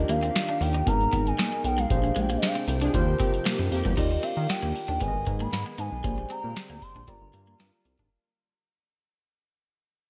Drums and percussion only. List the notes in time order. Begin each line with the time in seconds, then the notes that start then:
0.09 closed hi-hat
0.23 closed hi-hat
0.36 snare, closed hi-hat
0.62 open hi-hat
0.75 closed hi-hat
0.87 kick, closed hi-hat
1.01 closed hi-hat
1.13 kick, closed hi-hat
1.27 closed hi-hat
1.39 snare, closed hi-hat
1.52 closed hi-hat
1.64 closed hi-hat
1.78 closed hi-hat
1.90 kick, closed hi-hat
2.04 closed hi-hat
2.16 closed hi-hat
2.30 closed hi-hat
2.42 snare, closed hi-hat
2.56 closed hi-hat
2.68 closed hi-hat
2.82 closed hi-hat
2.94 kick, closed hi-hat
3.20 kick, closed hi-hat
3.34 closed hi-hat
3.46 snare, closed hi-hat
3.59 closed hi-hat
3.72 open hi-hat
3.85 kick, closed hi-hat
3.97 kick, closed hi-hat, crash
4.23 closed hi-hat
4.49 snare, closed hi-hat
4.75 open hi-hat
5.01 kick, closed hi-hat
5.26 kick, closed hi-hat
5.53 snare, closed hi-hat
5.78 closed hi-hat
6.04 kick, closed hi-hat
6.30 closed hi-hat
6.56 snare, closed hi-hat
6.82 kick, open hi-hat
7.08 kick, closed hi-hat
7.33 closed hi-hat
7.60 snare, closed hi-hat
7.85 closed hi-hat
7.99 kick